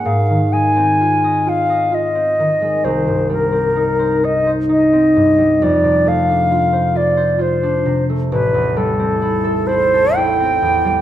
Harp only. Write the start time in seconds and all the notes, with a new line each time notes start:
Already playing: G#3
0.05 G#2
0.30 D#3
0.53 G#3
0.76 C4
1.01 F4
1.24 D#5
1.46 F4
1.70 D#5
1.92 F4
2.15 C4
2.39 D#3
2.62 G#3
2.84 C2
3.07 G2
3.29 G3
3.52 C4
3.76 D#4
3.99 C5
4.23 D#4
4.47 C5
4.69 D#4
4.93 C4
5.16 G2
5.38 G3
5.62 F2
5.84 C3
6.06 A3
6.30 D4
6.52 F4
6.73 C5
6.95 F4
7.17 C5
7.39 F4
7.63 D4
7.86 C3
8.10 A3
8.32 A1
8.54 E2
8.77 G3
8.99 C4
9.22 E4
9.44 A4
9.69 E4
9.94 A4
10.17 E4
10.40 C4
10.62 E2
10.85 G3